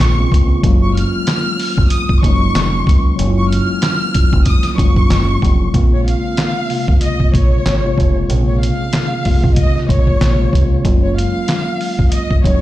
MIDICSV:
0, 0, Header, 1, 5, 480
1, 0, Start_track
1, 0, Key_signature, -5, "minor"
1, 0, Tempo, 638298
1, 477, Time_signature, 4, 2, 24, 8
1, 9486, End_track
2, 0, Start_track
2, 0, Title_t, "Violin section"
2, 0, Program_c, 0, 48
2, 0, Note_on_c, 0, 85, 94
2, 447, Note_off_c, 0, 85, 0
2, 617, Note_on_c, 0, 85, 75
2, 709, Note_off_c, 0, 85, 0
2, 724, Note_on_c, 0, 89, 87
2, 1410, Note_off_c, 0, 89, 0
2, 1437, Note_on_c, 0, 87, 83
2, 1653, Note_off_c, 0, 87, 0
2, 1677, Note_on_c, 0, 85, 97
2, 2367, Note_off_c, 0, 85, 0
2, 2535, Note_on_c, 0, 85, 78
2, 2628, Note_off_c, 0, 85, 0
2, 2635, Note_on_c, 0, 89, 86
2, 3326, Note_off_c, 0, 89, 0
2, 3354, Note_on_c, 0, 87, 86
2, 3571, Note_off_c, 0, 87, 0
2, 3598, Note_on_c, 0, 85, 91
2, 4287, Note_off_c, 0, 85, 0
2, 4459, Note_on_c, 0, 73, 73
2, 4550, Note_off_c, 0, 73, 0
2, 4561, Note_on_c, 0, 77, 88
2, 5249, Note_off_c, 0, 77, 0
2, 5282, Note_on_c, 0, 75, 80
2, 5495, Note_off_c, 0, 75, 0
2, 5525, Note_on_c, 0, 73, 87
2, 6211, Note_off_c, 0, 73, 0
2, 6377, Note_on_c, 0, 73, 73
2, 6469, Note_off_c, 0, 73, 0
2, 6477, Note_on_c, 0, 77, 81
2, 7167, Note_off_c, 0, 77, 0
2, 7191, Note_on_c, 0, 75, 85
2, 7409, Note_off_c, 0, 75, 0
2, 7439, Note_on_c, 0, 73, 92
2, 8128, Note_off_c, 0, 73, 0
2, 8296, Note_on_c, 0, 73, 76
2, 8388, Note_off_c, 0, 73, 0
2, 8403, Note_on_c, 0, 77, 83
2, 9090, Note_off_c, 0, 77, 0
2, 9115, Note_on_c, 0, 75, 78
2, 9332, Note_off_c, 0, 75, 0
2, 9356, Note_on_c, 0, 73, 92
2, 9486, Note_off_c, 0, 73, 0
2, 9486, End_track
3, 0, Start_track
3, 0, Title_t, "Tine electric piano"
3, 0, Program_c, 1, 4
3, 0, Control_c, 1, 64, 127
3, 0, Note_on_c, 1, 49, 75
3, 0, Note_on_c, 1, 56, 73
3, 0, Note_on_c, 1, 58, 74
3, 0, Note_on_c, 1, 60, 74
3, 0, Note_on_c, 1, 65, 92
3, 0, Note_on_c, 1, 68, 85
3, 122, Note_off_c, 1, 49, 0
3, 122, Note_on_c, 1, 49, 76
3, 130, Note_off_c, 1, 56, 0
3, 130, Note_on_c, 1, 56, 70
3, 139, Note_off_c, 1, 58, 0
3, 139, Note_on_c, 1, 58, 71
3, 147, Note_off_c, 1, 60, 0
3, 147, Note_on_c, 1, 60, 75
3, 156, Note_off_c, 1, 65, 0
3, 156, Note_on_c, 1, 65, 86
3, 443, Note_off_c, 1, 49, 0
3, 447, Note_off_c, 1, 56, 0
3, 451, Note_off_c, 1, 58, 0
3, 455, Note_off_c, 1, 60, 0
3, 460, Note_off_c, 1, 65, 0
3, 464, Note_on_c, 1, 54, 82
3, 473, Note_on_c, 1, 56, 71
3, 482, Note_on_c, 1, 58, 77
3, 488, Control_c, 1, 64, 0
3, 490, Note_on_c, 1, 61, 68
3, 496, Note_off_c, 1, 68, 0
3, 498, Note_on_c, 1, 65, 81
3, 617, Control_c, 1, 64, 127
3, 1354, Note_off_c, 1, 54, 0
3, 1359, Note_off_c, 1, 56, 0
3, 1363, Note_off_c, 1, 58, 0
3, 1367, Note_off_c, 1, 61, 0
3, 1371, Note_off_c, 1, 65, 0
3, 1662, Note_on_c, 1, 54, 83
3, 1669, Note_on_c, 1, 56, 73
3, 1678, Note_on_c, 1, 58, 69
3, 1687, Note_on_c, 1, 61, 72
3, 1695, Note_on_c, 1, 63, 86
3, 2332, Note_off_c, 1, 54, 0
3, 2336, Note_off_c, 1, 56, 0
3, 2340, Note_off_c, 1, 58, 0
3, 2345, Note_off_c, 1, 61, 0
3, 2349, Note_off_c, 1, 63, 0
3, 2378, Note_on_c, 1, 54, 76
3, 2387, Note_on_c, 1, 56, 68
3, 2395, Note_on_c, 1, 58, 64
3, 2403, Note_on_c, 1, 61, 72
3, 2412, Note_on_c, 1, 64, 65
3, 2460, Note_off_c, 1, 64, 0
3, 2461, Note_on_c, 1, 65, 80
3, 3271, Note_off_c, 1, 54, 0
3, 3276, Note_off_c, 1, 56, 0
3, 3279, Note_off_c, 1, 58, 0
3, 3284, Note_off_c, 1, 61, 0
3, 3313, Note_off_c, 1, 65, 0
3, 3572, Note_on_c, 1, 54, 74
3, 3580, Note_on_c, 1, 56, 71
3, 3588, Note_on_c, 1, 58, 72
3, 3597, Note_on_c, 1, 61, 70
3, 3605, Note_on_c, 1, 65, 76
3, 4247, Note_off_c, 1, 54, 0
3, 4251, Note_off_c, 1, 56, 0
3, 4255, Note_off_c, 1, 58, 0
3, 4260, Note_off_c, 1, 61, 0
3, 4264, Note_off_c, 1, 65, 0
3, 4302, Note_on_c, 1, 49, 69
3, 4309, Note_on_c, 1, 56, 66
3, 4317, Note_on_c, 1, 58, 70
3, 4326, Note_on_c, 1, 60, 72
3, 4327, Control_c, 1, 64, 0
3, 4335, Note_on_c, 1, 65, 82
3, 4437, Control_c, 1, 64, 127
3, 4972, Note_off_c, 1, 49, 0
3, 4976, Note_off_c, 1, 56, 0
3, 4980, Note_off_c, 1, 58, 0
3, 4984, Note_off_c, 1, 60, 0
3, 4989, Note_off_c, 1, 65, 0
3, 5007, Note_on_c, 1, 49, 67
3, 5016, Note_on_c, 1, 56, 68
3, 5024, Note_on_c, 1, 58, 65
3, 5033, Note_on_c, 1, 48, 65
3, 5041, Note_on_c, 1, 65, 74
3, 5791, Note_off_c, 1, 49, 0
3, 5795, Note_off_c, 1, 56, 0
3, 5799, Note_off_c, 1, 58, 0
3, 5803, Note_off_c, 1, 48, 0
3, 5808, Note_off_c, 1, 65, 0
3, 5875, Note_on_c, 1, 49, 70
3, 5884, Note_on_c, 1, 56, 73
3, 5891, Note_on_c, 1, 58, 69
3, 5900, Note_on_c, 1, 48, 69
3, 5909, Note_on_c, 1, 65, 86
3, 6199, Note_off_c, 1, 49, 0
3, 6204, Note_off_c, 1, 56, 0
3, 6207, Note_off_c, 1, 58, 0
3, 6212, Note_off_c, 1, 48, 0
3, 6216, Note_off_c, 1, 65, 0
3, 6228, Note_on_c, 1, 49, 76
3, 6235, Note_on_c, 1, 56, 65
3, 6244, Note_on_c, 1, 58, 70
3, 6253, Note_on_c, 1, 60, 70
3, 6261, Note_on_c, 1, 68, 84
3, 6895, Note_off_c, 1, 49, 0
3, 6899, Note_off_c, 1, 56, 0
3, 6903, Note_off_c, 1, 58, 0
3, 6908, Note_off_c, 1, 60, 0
3, 6912, Note_off_c, 1, 68, 0
3, 6935, Note_on_c, 1, 49, 74
3, 6943, Note_on_c, 1, 56, 67
3, 6950, Note_on_c, 1, 58, 71
3, 6961, Note_on_c, 1, 48, 71
3, 6968, Note_on_c, 1, 65, 88
3, 7715, Note_off_c, 1, 49, 0
3, 7718, Note_off_c, 1, 56, 0
3, 7722, Note_off_c, 1, 58, 0
3, 7727, Note_off_c, 1, 48, 0
3, 7731, Note_off_c, 1, 65, 0
3, 7798, Note_on_c, 1, 49, 74
3, 7806, Note_on_c, 1, 56, 68
3, 7814, Note_on_c, 1, 58, 65
3, 7824, Note_on_c, 1, 48, 72
3, 7832, Note_on_c, 1, 65, 84
3, 8121, Note_off_c, 1, 49, 0
3, 8125, Note_off_c, 1, 56, 0
3, 8129, Note_off_c, 1, 58, 0
3, 8134, Note_off_c, 1, 48, 0
3, 8138, Note_off_c, 1, 65, 0
3, 8143, Note_on_c, 1, 54, 81
3, 8151, Note_on_c, 1, 56, 68
3, 8160, Note_on_c, 1, 58, 73
3, 8167, Note_on_c, 1, 61, 65
3, 8168, Control_c, 1, 64, 0
3, 8176, Note_on_c, 1, 65, 77
3, 8308, Control_c, 1, 64, 127
3, 9034, Note_off_c, 1, 54, 0
3, 9038, Note_off_c, 1, 56, 0
3, 9042, Note_off_c, 1, 58, 0
3, 9046, Note_off_c, 1, 61, 0
3, 9050, Note_off_c, 1, 65, 0
3, 9341, Note_on_c, 1, 54, 78
3, 9349, Note_on_c, 1, 56, 70
3, 9358, Note_on_c, 1, 58, 66
3, 9365, Note_on_c, 1, 61, 69
3, 9375, Note_on_c, 1, 63, 86
3, 9486, Note_off_c, 1, 54, 0
3, 9486, Note_off_c, 1, 56, 0
3, 9486, Note_off_c, 1, 58, 0
3, 9486, Note_off_c, 1, 61, 0
3, 9486, Note_off_c, 1, 63, 0
3, 9486, End_track
4, 0, Start_track
4, 0, Title_t, "Fingered electric bass"
4, 0, Program_c, 2, 33
4, 0, Note_on_c, 2, 34, 93
4, 191, Note_off_c, 2, 34, 0
4, 239, Note_on_c, 2, 37, 98
4, 431, Note_off_c, 2, 37, 0
4, 478, Note_on_c, 2, 30, 105
4, 779, Note_off_c, 2, 30, 0
4, 1337, Note_on_c, 2, 32, 79
4, 1418, Note_off_c, 2, 32, 0
4, 1678, Note_on_c, 2, 30, 101
4, 1870, Note_off_c, 2, 30, 0
4, 1922, Note_on_c, 2, 29, 105
4, 2112, Note_off_c, 2, 29, 0
4, 2159, Note_on_c, 2, 37, 98
4, 2350, Note_off_c, 2, 37, 0
4, 2400, Note_on_c, 2, 30, 110
4, 2700, Note_off_c, 2, 30, 0
4, 3256, Note_on_c, 2, 30, 88
4, 3338, Note_off_c, 2, 30, 0
4, 3598, Note_on_c, 2, 30, 101
4, 3790, Note_off_c, 2, 30, 0
4, 3838, Note_on_c, 2, 30, 94
4, 4030, Note_off_c, 2, 30, 0
4, 4079, Note_on_c, 2, 29, 104
4, 4270, Note_off_c, 2, 29, 0
4, 4318, Note_on_c, 2, 34, 100
4, 4619, Note_off_c, 2, 34, 0
4, 5176, Note_on_c, 2, 37, 82
4, 5258, Note_off_c, 2, 37, 0
4, 5518, Note_on_c, 2, 34, 87
4, 5710, Note_off_c, 2, 34, 0
4, 5760, Note_on_c, 2, 32, 93
4, 5951, Note_off_c, 2, 32, 0
4, 5999, Note_on_c, 2, 29, 91
4, 6190, Note_off_c, 2, 29, 0
4, 6240, Note_on_c, 2, 34, 110
4, 6540, Note_off_c, 2, 34, 0
4, 7097, Note_on_c, 2, 34, 85
4, 7178, Note_off_c, 2, 34, 0
4, 7438, Note_on_c, 2, 34, 94
4, 7630, Note_off_c, 2, 34, 0
4, 7679, Note_on_c, 2, 34, 87
4, 7870, Note_off_c, 2, 34, 0
4, 7920, Note_on_c, 2, 37, 99
4, 8111, Note_off_c, 2, 37, 0
4, 8158, Note_on_c, 2, 30, 100
4, 8459, Note_off_c, 2, 30, 0
4, 9016, Note_on_c, 2, 32, 79
4, 9098, Note_off_c, 2, 32, 0
4, 9358, Note_on_c, 2, 30, 95
4, 9486, Note_off_c, 2, 30, 0
4, 9486, End_track
5, 0, Start_track
5, 0, Title_t, "Drums"
5, 0, Note_on_c, 9, 38, 123
5, 5, Note_on_c, 9, 39, 100
5, 8, Note_on_c, 9, 42, 91
5, 75, Note_off_c, 9, 38, 0
5, 80, Note_off_c, 9, 39, 0
5, 83, Note_off_c, 9, 42, 0
5, 239, Note_on_c, 9, 36, 96
5, 256, Note_on_c, 9, 42, 76
5, 314, Note_off_c, 9, 36, 0
5, 331, Note_off_c, 9, 42, 0
5, 477, Note_on_c, 9, 36, 118
5, 480, Note_on_c, 9, 42, 100
5, 553, Note_off_c, 9, 36, 0
5, 555, Note_off_c, 9, 42, 0
5, 733, Note_on_c, 9, 42, 74
5, 808, Note_off_c, 9, 42, 0
5, 954, Note_on_c, 9, 42, 91
5, 960, Note_on_c, 9, 38, 122
5, 965, Note_on_c, 9, 39, 102
5, 1029, Note_off_c, 9, 42, 0
5, 1035, Note_off_c, 9, 38, 0
5, 1040, Note_off_c, 9, 39, 0
5, 1200, Note_on_c, 9, 46, 58
5, 1275, Note_off_c, 9, 46, 0
5, 1336, Note_on_c, 9, 36, 99
5, 1411, Note_off_c, 9, 36, 0
5, 1432, Note_on_c, 9, 42, 107
5, 1507, Note_off_c, 9, 42, 0
5, 1574, Note_on_c, 9, 36, 86
5, 1649, Note_off_c, 9, 36, 0
5, 1677, Note_on_c, 9, 36, 95
5, 1686, Note_on_c, 9, 42, 80
5, 1752, Note_off_c, 9, 36, 0
5, 1761, Note_off_c, 9, 42, 0
5, 1920, Note_on_c, 9, 38, 118
5, 1924, Note_on_c, 9, 39, 99
5, 1928, Note_on_c, 9, 42, 88
5, 1995, Note_off_c, 9, 38, 0
5, 1999, Note_off_c, 9, 39, 0
5, 2003, Note_off_c, 9, 42, 0
5, 2158, Note_on_c, 9, 36, 93
5, 2174, Note_on_c, 9, 42, 76
5, 2233, Note_off_c, 9, 36, 0
5, 2250, Note_off_c, 9, 42, 0
5, 2399, Note_on_c, 9, 42, 99
5, 2474, Note_off_c, 9, 42, 0
5, 2651, Note_on_c, 9, 42, 72
5, 2726, Note_off_c, 9, 42, 0
5, 2872, Note_on_c, 9, 42, 88
5, 2878, Note_on_c, 9, 38, 121
5, 2883, Note_on_c, 9, 39, 99
5, 2948, Note_off_c, 9, 42, 0
5, 2953, Note_off_c, 9, 38, 0
5, 2958, Note_off_c, 9, 39, 0
5, 3117, Note_on_c, 9, 42, 83
5, 3121, Note_on_c, 9, 36, 98
5, 3192, Note_off_c, 9, 42, 0
5, 3196, Note_off_c, 9, 36, 0
5, 3255, Note_on_c, 9, 36, 96
5, 3330, Note_off_c, 9, 36, 0
5, 3351, Note_on_c, 9, 42, 110
5, 3355, Note_on_c, 9, 36, 96
5, 3426, Note_off_c, 9, 42, 0
5, 3430, Note_off_c, 9, 36, 0
5, 3483, Note_on_c, 9, 42, 46
5, 3495, Note_on_c, 9, 38, 39
5, 3558, Note_off_c, 9, 42, 0
5, 3571, Note_off_c, 9, 38, 0
5, 3597, Note_on_c, 9, 36, 98
5, 3604, Note_on_c, 9, 42, 79
5, 3672, Note_off_c, 9, 36, 0
5, 3679, Note_off_c, 9, 42, 0
5, 3734, Note_on_c, 9, 36, 83
5, 3809, Note_off_c, 9, 36, 0
5, 3839, Note_on_c, 9, 38, 123
5, 3843, Note_on_c, 9, 39, 98
5, 3847, Note_on_c, 9, 42, 86
5, 3914, Note_off_c, 9, 38, 0
5, 3919, Note_off_c, 9, 39, 0
5, 3922, Note_off_c, 9, 42, 0
5, 4078, Note_on_c, 9, 36, 94
5, 4095, Note_on_c, 9, 42, 75
5, 4153, Note_off_c, 9, 36, 0
5, 4170, Note_off_c, 9, 42, 0
5, 4317, Note_on_c, 9, 36, 115
5, 4318, Note_on_c, 9, 42, 95
5, 4392, Note_off_c, 9, 36, 0
5, 4393, Note_off_c, 9, 42, 0
5, 4571, Note_on_c, 9, 42, 73
5, 4646, Note_off_c, 9, 42, 0
5, 4793, Note_on_c, 9, 42, 83
5, 4799, Note_on_c, 9, 38, 125
5, 4803, Note_on_c, 9, 39, 95
5, 4868, Note_off_c, 9, 42, 0
5, 4874, Note_off_c, 9, 38, 0
5, 4879, Note_off_c, 9, 39, 0
5, 5038, Note_on_c, 9, 46, 58
5, 5113, Note_off_c, 9, 46, 0
5, 5175, Note_on_c, 9, 36, 99
5, 5250, Note_off_c, 9, 36, 0
5, 5271, Note_on_c, 9, 42, 103
5, 5346, Note_off_c, 9, 42, 0
5, 5414, Note_on_c, 9, 36, 85
5, 5489, Note_off_c, 9, 36, 0
5, 5517, Note_on_c, 9, 36, 90
5, 5525, Note_on_c, 9, 42, 77
5, 5592, Note_off_c, 9, 36, 0
5, 5600, Note_off_c, 9, 42, 0
5, 5759, Note_on_c, 9, 38, 117
5, 5764, Note_on_c, 9, 39, 100
5, 5767, Note_on_c, 9, 42, 84
5, 5835, Note_off_c, 9, 38, 0
5, 5839, Note_off_c, 9, 39, 0
5, 5842, Note_off_c, 9, 42, 0
5, 5998, Note_on_c, 9, 36, 91
5, 6015, Note_on_c, 9, 42, 71
5, 6073, Note_off_c, 9, 36, 0
5, 6090, Note_off_c, 9, 42, 0
5, 6239, Note_on_c, 9, 42, 93
5, 6315, Note_off_c, 9, 42, 0
5, 6491, Note_on_c, 9, 42, 73
5, 6567, Note_off_c, 9, 42, 0
5, 6713, Note_on_c, 9, 42, 87
5, 6719, Note_on_c, 9, 38, 121
5, 6723, Note_on_c, 9, 39, 96
5, 6788, Note_off_c, 9, 42, 0
5, 6794, Note_off_c, 9, 38, 0
5, 6799, Note_off_c, 9, 39, 0
5, 6958, Note_on_c, 9, 46, 59
5, 6962, Note_on_c, 9, 36, 93
5, 7033, Note_off_c, 9, 46, 0
5, 7037, Note_off_c, 9, 36, 0
5, 7095, Note_on_c, 9, 36, 97
5, 7171, Note_off_c, 9, 36, 0
5, 7192, Note_on_c, 9, 42, 103
5, 7195, Note_on_c, 9, 36, 93
5, 7267, Note_off_c, 9, 42, 0
5, 7270, Note_off_c, 9, 36, 0
5, 7336, Note_on_c, 9, 38, 37
5, 7411, Note_off_c, 9, 38, 0
5, 7437, Note_on_c, 9, 36, 90
5, 7446, Note_on_c, 9, 42, 77
5, 7512, Note_off_c, 9, 36, 0
5, 7521, Note_off_c, 9, 42, 0
5, 7574, Note_on_c, 9, 36, 83
5, 7649, Note_off_c, 9, 36, 0
5, 7680, Note_on_c, 9, 38, 118
5, 7684, Note_on_c, 9, 39, 95
5, 7688, Note_on_c, 9, 42, 84
5, 7755, Note_off_c, 9, 38, 0
5, 7759, Note_off_c, 9, 39, 0
5, 7763, Note_off_c, 9, 42, 0
5, 7918, Note_on_c, 9, 36, 93
5, 7936, Note_on_c, 9, 42, 76
5, 7994, Note_off_c, 9, 36, 0
5, 8011, Note_off_c, 9, 42, 0
5, 8157, Note_on_c, 9, 36, 114
5, 8159, Note_on_c, 9, 42, 92
5, 8233, Note_off_c, 9, 36, 0
5, 8234, Note_off_c, 9, 42, 0
5, 8411, Note_on_c, 9, 42, 74
5, 8486, Note_off_c, 9, 42, 0
5, 8633, Note_on_c, 9, 42, 85
5, 8639, Note_on_c, 9, 38, 120
5, 8643, Note_on_c, 9, 39, 96
5, 8708, Note_off_c, 9, 42, 0
5, 8714, Note_off_c, 9, 38, 0
5, 8719, Note_off_c, 9, 39, 0
5, 8879, Note_on_c, 9, 46, 59
5, 8954, Note_off_c, 9, 46, 0
5, 9015, Note_on_c, 9, 36, 97
5, 9091, Note_off_c, 9, 36, 0
5, 9112, Note_on_c, 9, 42, 108
5, 9187, Note_off_c, 9, 42, 0
5, 9254, Note_on_c, 9, 36, 86
5, 9330, Note_off_c, 9, 36, 0
5, 9357, Note_on_c, 9, 36, 94
5, 9366, Note_on_c, 9, 42, 79
5, 9432, Note_off_c, 9, 36, 0
5, 9441, Note_off_c, 9, 42, 0
5, 9486, End_track
0, 0, End_of_file